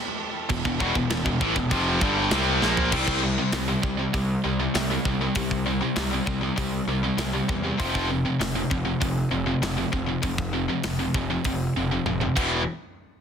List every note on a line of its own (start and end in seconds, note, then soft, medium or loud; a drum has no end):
0.00 2.89 E3 medium
0.00 2.89 B3 medium
0.00 2.89 G4 medium
0.00 2.89 A4 medium
0.49 0.64 E1 medium
0.49 0.65 E2 medium
0.49 0.65 B2 medium
0.49 kick loud
0.49 crash medium
0.65 0.79 E1 medium
0.65 0.79 E2 medium
0.65 0.80 B2 medium
0.65 kick medium
0.80 0.94 E1 loud
0.80 0.95 E2 medium
0.80 0.95 B2 loud
0.80 kick medium
0.95 1.09 E1 medium
0.95 1.10 E2 medium
0.95 1.10 B2 medium
0.95 kick medium
1.10 1.24 E1 medium
1.10 1.25 E2 medium
1.10 1.26 B2 medium
1.10 snare loud
1.10 crash medium
1.26 1.40 E1 medium
1.26 1.41 E2 medium
1.26 1.40 B2 medium
1.26 kick medium
1.41 1.55 A1 medium
1.41 1.55 A2 medium
1.41 1.56 E3 medium
1.41 kick loud
1.56 1.70 E1 medium
1.56 1.71 E2 medium
1.56 1.71 B2 medium
1.56 kick medium
1.71 2.00 F1 loud
1.71 2.01 F2 loud
1.71 2.01 C3 loud
1.71 2.01 F3 loud
1.71 kick loud
1.71 crash medium
2.01 2.30 G1 medium
2.01 2.31 G2 loud
2.01 2.31 D3 loud
2.01 2.31 G3 medium
2.01 kick loud
2.31 2.60 C2 medium
2.31 2.61 C3 medium
2.31 2.61 G3 medium
2.31 2.62 C4 loud
2.31 snare loud
2.31 crash medium
2.62 2.90 A#1 medium
2.62 2.91 A#2 medium
2.62 2.92 F3 medium
2.62 2.92 A#3 loud
2.62 snare medium
2.77 floor tom medium
2.92 3.37 C2 medium
2.92 3.21 C3 medium
2.92 3.21 G3 medium
2.92 3.21 C4 loud
2.92 kick loud
2.92 crash loud
3.08 kick medium
3.23 3.38 C3 medium
3.23 3.37 G3 medium
3.38 3.52 C3 medium
3.38 3.52 G3 medium
3.53 3.75 C2 medium
3.53 3.68 C3 medium
3.53 3.67 G3 medium
3.53 snare loud
3.53 open hi-hat medium
3.69 3.83 C3 medium
3.69 3.83 G3 medium
3.83 4.05 C2 medium
3.83 3.98 C3 medium
3.83 3.98 G3 medium
3.83 kick loud
3.99 4.13 C3 medium
3.99 4.13 G3 medium
4.14 4.36 C2 medium
4.14 4.41 C3 medium
4.14 4.42 G3 medium
4.14 kick loud
4.14 open hi-hat medium
4.44 4.67 C2 medium
4.44 4.59 C3 medium
4.44 4.58 G3 medium
4.60 4.73 C3 medium
4.60 4.73 G3 medium
4.74 4.97 C2 loud
4.74 4.90 C3 medium
4.74 4.89 G3 medium
4.74 snare loud
4.74 open hi-hat medium
4.90 5.05 C3 medium
4.90 5.04 G3 medium
5.05 5.27 C2 medium
5.05 5.20 C3 medium
5.05 5.20 G3 medium
5.05 kick medium
5.21 5.35 C3 medium
5.21 5.35 G3 medium
5.35 5.80 C2 medium
5.35 5.63 C3 medium
5.35 5.63 G3 medium
5.35 kick loud
5.35 open hi-hat medium
5.51 kick medium
5.66 5.80 C3 medium
5.66 5.80 G3 medium
5.81 5.95 C3 medium
5.81 5.95 G3 medium
5.96 6.19 C2 medium
5.96 6.10 C3 medium
5.96 6.10 G3 medium
5.96 snare loud
5.96 open hi-hat medium
6.11 6.25 C3 medium
6.11 6.25 G3 medium
6.26 6.49 C2 medium
6.26 6.40 C3 medium
6.26 6.40 G3 medium
6.26 kick medium
6.41 6.55 C3 medium
6.41 6.55 G3 medium
6.56 6.80 C2 medium
6.56 6.84 C3 medium
6.56 6.84 G3 medium
6.56 kick loud
6.56 open hi-hat medium
6.87 7.10 C2 medium
6.87 7.02 C3 medium
6.87 7.02 G3 medium
7.03 7.16 C3 medium
7.03 7.17 G3 medium
7.17 7.40 C2 medium
7.17 7.33 C3 medium
7.17 7.32 G3 medium
7.17 snare loud
7.17 open hi-hat medium
7.33 7.47 C3 medium
7.33 7.47 G3 medium
7.49 7.71 E2 medium
7.49 7.63 C3 medium
7.49 7.62 G3 medium
7.49 kick medium
7.64 7.78 C3 medium
7.64 7.79 G3 medium
7.78 8.24 F1 medium
7.78 8.07 F2 medium
7.78 8.08 C3 medium
7.78 8.08 F3 medium
7.78 kick loud
7.78 open hi-hat medium
7.95 kick medium
8.09 8.24 F2 medium
8.09 8.24 C3 medium
8.25 8.38 F2 medium
8.25 8.39 C3 medium
8.39 8.62 F1 medium
8.39 8.54 F2 medium
8.39 8.54 C3 medium
8.39 snare loud
8.39 open hi-hat medium
8.55 8.69 F2 medium
8.55 8.69 C3 medium
8.70 8.93 F1 medium
8.70 8.84 F2 medium
8.70 8.84 C3 medium
8.70 kick medium
8.85 8.99 F2 medium
8.85 8.99 C3 medium
9.00 9.23 F1 medium
9.00 9.28 F2 medium
9.00 9.28 C3 medium
9.00 kick loud
9.00 open hi-hat medium
9.31 9.53 F1 medium
9.31 9.45 F2 medium
9.31 9.45 C3 medium
9.46 9.61 F2 medium
9.46 9.61 C3 medium
9.62 9.84 F1 medium
9.62 9.76 F2 medium
9.62 9.76 C3 medium
9.62 snare loud
9.62 open hi-hat soft
9.77 9.91 F2 medium
9.77 9.91 C3 medium
9.92 10.15 F1 medium
9.92 10.06 F2 medium
9.92 10.05 C3 medium
9.92 kick medium
10.06 10.21 F2 medium
10.06 10.21 C3 medium
10.22 10.67 F1 medium
10.22 10.50 F2 medium
10.22 10.50 C3 medium
10.22 kick loud
10.22 open hi-hat soft
10.38 kick medium
10.53 10.68 F2 medium
10.53 10.67 C3 medium
10.68 10.83 F2 medium
10.68 10.83 C3 medium
10.84 11.06 F1 medium
10.84 10.99 F2 medium
10.84 10.98 C3 medium
10.84 snare loud
10.84 open hi-hat medium
10.99 11.14 F2 medium
10.99 11.13 C3 medium
11.14 11.36 F1 medium
11.14 11.30 F2 medium
11.14 11.29 C3 medium
11.14 kick medium
11.30 11.44 F2 medium
11.30 11.45 C3 medium
11.44 11.67 F1 medium
11.44 11.72 F2 medium
11.44 11.72 C3 medium
11.44 kick loud
11.44 open hi-hat medium
11.76 11.98 F1 medium
11.76 11.91 F2 medium
11.76 11.90 C3 medium
11.92 12.05 F2 medium
11.92 12.06 C3 medium
12.05 12.27 F1 medium
12.05 12.21 F2 medium
12.05 12.21 C3 medium
12.05 high tom medium
12.21 12.36 F2 medium
12.21 12.36 C3 medium
12.21 mid tom medium
12.36 12.64 E1 medium
12.36 12.60 E2 medium
12.36 12.61 B2 loud
12.36 12.61 E3 medium
12.36 kick medium
12.36 crash medium